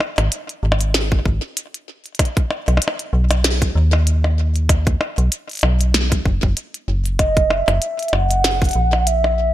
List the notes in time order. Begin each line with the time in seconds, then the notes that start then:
0.00 percussion blips
0.18 G#1, closed hi-hat, percussion blips
0.32 closed hi-hat
0.49 closed hi-hat
0.63 G#1
0.72 percussion blips
0.81 closed hi-hat
0.94 snare, closed hi-hat
1.12 kick
1.25 G#1, kick
1.57 closed hi-hat
1.74 closed hi-hat
2.06 closed hi-hat
2.15 closed hi-hat
2.19 kick, closed hi-hat, percussion blips
2.25 closed hi-hat
2.37 kick, closed hi-hat
2.51 percussion blips
2.68 B1, closed hi-hat, percussion blips
2.77 percussion blips
2.82 closed hi-hat
2.88 percussion blips
2.99 closed hi-hat
3.13 B1
3.31 closed hi-hat, percussion blips
3.44 snare, closed hi-hat
3.62 kick, closed hi-hat
3.75 D#2
3.93 percussion blips
4.07 closed hi-hat
4.24 percussion blips
4.56 closed hi-hat
4.69 kick, closed hi-hat, percussion blips
4.87 kick, closed hi-hat
5.01 percussion blips
5.18 B1, closed hi-hat
5.32 closed hi-hat
5.49 closed hi-hat
5.51 closed hi-hat
5.53 closed hi-hat
5.55 closed hi-hat
5.57 closed hi-hat
5.59 closed hi-hat
5.61 B1, closed hi-hat, percussion blips
5.81 closed hi-hat
5.94 snare, closed hi-hat
6.12 kick, closed hi-hat
6.25 F#1, kick
6.43 F#1, kick
6.57 closed hi-hat
6.74 closed hi-hat
6.88 F#1
7.06 closed hi-hat
7.19 D#5, kick, closed hi-hat, percussion blips
7.37 kick, closed hi-hat
7.50 E5, percussion blips
7.68 F#1, closed hi-hat, percussion blips
7.82 closed hi-hat
7.99 closed hi-hat
8.03 closed hi-hat
8.08 closed hi-hat
8.13 F#1 F#5, percussion blips
8.31 closed hi-hat
8.44 snare, closed hi-hat
8.62 kick, closed hi-hat
8.64 closed hi-hat
8.69 closed hi-hat
8.71 closed hi-hat
8.73 A#1, closed hi-hat
8.93 percussion blips
9.07 E5, closed hi-hat
9.24 percussion blips